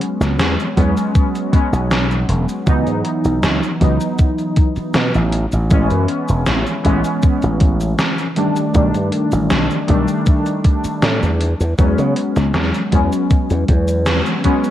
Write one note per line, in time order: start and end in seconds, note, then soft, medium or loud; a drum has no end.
0.00 0.72 F#3 medium
0.00 0.72 G#3 medium
0.00 0.73 B3 medium
0.00 0.73 C#4 medium
0.00 closed hi-hat medium
0.20 0.35 C#2 medium
0.20 snare soft
0.20 closed hi-hat soft
0.20 cabasa medium
0.39 0.55 E2 loud
0.39 snare loud
0.39 closed hi-hat medium
0.39 cabasa soft
0.60 closed hi-hat soft
0.60 cabasa soft
0.76 0.93 E2 medium
0.76 1.49 F#3 medium
0.76 1.49 G#3 medium
0.76 1.50 B3 medium
0.76 1.50 C#4 loud
0.76 kick medium
0.76 closed hi-hat medium
0.97 closed hi-hat soft
0.97 cabasa medium
1.15 kick loud
1.15 closed hi-hat medium
1.15 cabasa soft
1.35 closed hi-hat soft
1.35 cabasa soft
1.52 2.62 F#3 medium
1.52 2.63 G#3 medium
1.52 2.63 B3 medium
1.52 2.64 C#4 medium
1.52 kick loud
1.52 closed hi-hat medium
1.73 2.23 B1 loud
1.73 closed hi-hat soft
1.73 cabasa medium
1.91 snare loud
1.91 closed hi-hat medium
1.91 cabasa soft
2.11 closed hi-hat soft
2.11 cabasa soft
2.29 2.45 E1 medium
2.29 closed hi-hat medium
2.49 closed hi-hat soft
2.49 cabasa medium
2.66 2.83 C#2 loud
2.66 3.76 E3 medium
2.66 3.76 F#3 medium
2.66 3.77 B3 medium
2.66 3.78 D#4 loud
2.66 kick loud
2.66 closed hi-hat medium
2.66 cabasa soft
2.87 3.01 G#2 medium
2.87 closed hi-hat soft
2.87 cabasa soft
3.05 closed hi-hat medium
3.25 3.39 B1 medium
3.25 closed hi-hat soft
3.25 cabasa soft
3.43 3.59 C#2 loud
3.43 snare loud
3.43 closed hi-hat medium
3.43 cabasa soft
3.63 closed hi-hat soft
3.63 cabasa soft
3.80 3.97 C#2 medium
3.80 5.30 E3 medium
3.80 5.31 F#3 medium
3.80 5.31 B3 medium
3.80 5.32 D#4 loud
3.80 kick medium
3.80 closed hi-hat medium
4.01 closed hi-hat soft
4.01 cabasa medium
4.19 kick loud
4.19 closed hi-hat medium
4.19 cabasa soft
4.38 closed hi-hat soft
4.38 cabasa soft
4.56 kick loud
4.56 closed hi-hat medium
4.76 muted slap bass stroke soft
4.76 closed hi-hat soft
4.76 cabasa medium
4.94 5.11 B2 loud
4.94 snare loud
4.94 closed hi-hat medium
4.94 cabasa soft
5.15 5.45 A1 loud
5.15 closed hi-hat soft
5.15 cabasa soft
5.33 closed hi-hat loud
5.52 5.67 A1 medium
5.52 closed hi-hat soft
5.52 cabasa medium
5.70 5.87 A1 loud
5.70 6.80 E3 medium
5.70 6.81 G#3 medium
5.70 6.81 B3 medium
5.70 6.82 C#4 medium
5.70 kick loud
5.70 closed hi-hat medium
5.70 cabasa soft
5.90 6.05 F#2 medium
5.90 closed hi-hat soft
5.90 cabasa soft
6.08 closed hi-hat medium
6.29 6.44 E1 medium
6.29 closed hi-hat soft
6.29 cabasa medium
6.46 6.63 A1 loud
6.46 snare loud
6.46 closed hi-hat medium
6.46 cabasa soft
6.67 closed hi-hat soft
6.67 cabasa soft
6.83 7.01 A1 medium
6.83 8.32 E3 medium
6.83 8.32 G#3 medium
6.83 8.33 B3 medium
6.83 8.33 C#4 loud
6.83 kick medium
6.83 closed hi-hat medium
7.04 closed hi-hat soft
7.04 cabasa medium
7.23 kick loud
7.23 closed hi-hat medium
7.23 cabasa soft
7.42 7.93 A1 medium
7.42 closed hi-hat soft
7.42 cabasa soft
7.60 kick loud
7.60 closed hi-hat medium
7.81 closed hi-hat soft
7.81 cabasa medium
7.99 snare loud
7.99 closed hi-hat medium
7.99 cabasa soft
8.18 closed hi-hat soft
8.18 cabasa soft
8.36 8.70 D#3 medium
8.36 8.70 G3 medium
8.36 8.71 A3 medium
8.36 8.71 D4 loud
8.36 closed hi-hat medium
8.56 closed hi-hat soft
8.56 cabasa medium
8.74 8.91 B1 loud
8.74 9.84 D#3 loud
8.74 9.84 G3 medium
8.74 9.85 A3 medium
8.74 9.85 D4 loud
8.74 kick loud
8.74 closed hi-hat medium
8.74 cabasa soft
8.94 9.09 G2 medium
8.94 closed hi-hat soft
8.94 cabasa soft
9.12 closed hi-hat medium
9.32 9.47 A1 medium
9.32 closed hi-hat soft
9.32 cabasa medium
9.50 9.67 B1 loud
9.50 snare loud
9.50 closed hi-hat medium
9.50 cabasa soft
9.71 closed hi-hat soft
9.71 cabasa soft
9.87 10.05 B1 medium
9.87 11.38 D#3 medium
9.87 11.38 G3 medium
9.87 11.39 A3 medium
9.87 11.39 D4 loud
9.87 kick medium
9.87 closed hi-hat medium
10.08 closed hi-hat soft
10.08 cabasa medium
10.26 kick loud
10.26 closed hi-hat medium
10.26 cabasa soft
10.46 closed hi-hat soft
10.46 cabasa soft
10.64 kick loud
10.64 closed hi-hat medium
10.84 muted slap bass stroke soft
10.84 closed hi-hat soft
10.84 cabasa medium
11.02 11.19 A2 loud
11.02 snare loud
11.02 closed hi-hat medium
11.02 cabasa soft
11.23 11.53 E2 loud
11.23 closed hi-hat soft
11.23 cabasa soft
11.41 closed hi-hat loud
11.60 11.75 E2 medium
11.60 closed hi-hat soft
11.60 cabasa medium
11.78 11.95 E2 loud
11.78 12.88 F#3 medium
11.78 12.88 G#3 medium
11.78 12.89 B3 medium
11.78 12.89 C#4 medium
11.78 kick loud
11.78 closed hi-hat medium
11.78 cabasa soft
11.98 12.13 C#3 medium
11.98 closed hi-hat soft
11.98 cabasa soft
12.16 closed hi-hat loud
12.36 12.51 C#2 loud
12.36 snare soft
12.36 closed hi-hat soft
12.36 cabasa medium
12.54 12.71 E2 loud
12.54 snare loud
12.54 closed hi-hat medium
12.54 cabasa soft
12.74 closed hi-hat soft
12.74 cabasa soft
12.91 13.09 E2 medium
12.91 14.39 F#3 medium
12.91 14.40 G#3 medium
12.91 14.40 B3 medium
12.91 14.41 C#4 loud
12.91 kick medium
12.91 closed hi-hat medium
13.13 closed hi-hat soft
13.13 cabasa medium
13.31 kick loud
13.31 closed hi-hat medium
13.31 cabasa soft
13.50 13.68 E2 medium
13.50 closed hi-hat soft
13.50 cabasa soft
13.68 14.20 E2 loud
13.68 kick loud
13.68 closed hi-hat medium
13.88 closed hi-hat soft
13.88 cabasa medium
14.06 snare loud
14.06 closed hi-hat medium
14.06 cabasa soft
14.26 closed hi-hat soft
14.26 cabasa soft
14.44 14.70 F#3 medium
14.44 14.70 G#3 medium
14.44 14.70 B3 medium
14.44 14.70 C#4 loud
14.44 kick medium
14.44 closed hi-hat loud
14.64 closed hi-hat soft
14.64 cabasa medium